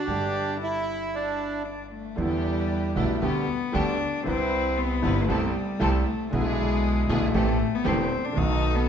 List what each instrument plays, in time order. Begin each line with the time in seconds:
Already playing: bandoneon D4
0.07 upright bass G1, grand piano G1 G2 D3 G3 B3, cello G4
0.11 grand piano G4
0.60 cello E4, bandoneon E4
1.15 bandoneon D4
1.65 cello D4
1.92 cello A3
2.16 grand piano E2 D3 E3 G3 B3 E4, upright bass E2, cello G3, string section D4 E4 G4
2.95 grand piano B1 B2 D3 G3 B3 E4, upright bass B1, cello A3, string section D4 E4 G4
3.22 upright bass D2, grand piano D2 D3 G3 B3 G4, string section B3 D4 G4, cello B3
3.72 grand piano D2 D3 G3 B3 G4, upright bass D2, string section B3 D4 G4, cello D4
4.23 grand piano C2 C3 G3 E4 B4, upright bass C2, cello C4, string section E4 B4
4.77 cello B3
5.02 grand piano G1 G2 C3 G3 B3 E4, upright bass G1, string section C4 E4 B4
5.28 grand piano C2 C3 G3 A3 E4, upright bass C2, cello G3, string section C4 G4 A4
5.79 grand piano C2 C3 G3 A3 E4, upright bass C2, string section C4 G4 A4
6.06 cello A3
6.31 grand piano B1 B2 D3 G#3 B3 E4, upright bass B1, cello G#3, string section D4 E4 G#4
7.08 upright bass B1, grand piano B1 B2 D3 G#3 B3 E4, cello A3, string section D4 E4 G#4
7.34 upright bass A1, grand piano A1 A2 E3 A3 C4 G4, string section C4 G4 A4
7.74 cello B3
7.84 grand piano E1 E2 E3 A3 C4 G4, upright bass E1, string section C4 G4 A4, cello C4
8.25 cello D4
8.33 grand piano B1 B2 D#3 A3 B3, string section B3 D#4 A4
8.37 upright bass B1, cello D#4, grand piano F#4
8.76 cello B3